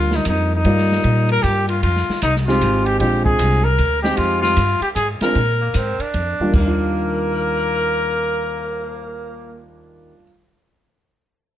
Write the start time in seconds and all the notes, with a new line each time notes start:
Already playing: D2 G3 A#3 D4 F4
0.11 snare
0.15 D#4
0.25 F2 D#4, kick, hi-hat pedal, ride
0.56 D#4
0.65 G2 G3 A#3 F4 D5, kick, ride
0.78 snare
0.92 snare
1.04 A#2, kick, ride
1.29 A#4, ride
1.43 G2 G4, kick, hi-hat pedal, ride
1.69 F4, ride
1.83 F2 F4, kick, ride
1.96 snare
2.09 muted upright bass stroke, snare
2.22 C2 D#4, kick, hi-hat pedal, ride
2.36 snare
2.46 G#3 C4 D#4 F4 G4, snare
2.61 G#1, kick, hi-hat pedal, ride
2.85 G4, ride
2.99 A#1 G#3 C4 D4 F4 G4, kick, ride
3.24 G#4, kick
3.39 C2, kick, hi-hat pedal, ride
3.64 A#4
3.78 D2, kick, ride
4.02 G#3 C4 D#4 G4, snare
4.17 F2 F4, kick, ride
4.42 F4, snare
4.57 G2, kick, hi-hat pedal, ride
4.81 G4, muted upright bass stroke, ride
4.96 G#2 G#4, kick, hi-hat pedal, ride
5.21 G#3 C4 D4 F4 A#4, muted upright bass stroke, snare, ride
5.35 A#2, kick, ride
5.61 A#3
5.74 G#2 C4, kick, hi-hat pedal, ride
5.99 D4, muted upright bass stroke, ride
6.14 F2, kick, ride
6.40 D#2 G3 A#3 D4 F4, muted upright bass stroke
6.49 D#3
6.53 D#2 G3 A#3 A#4, kick, crash
6.61 D4
6.67 F4
6.79 cymbal swell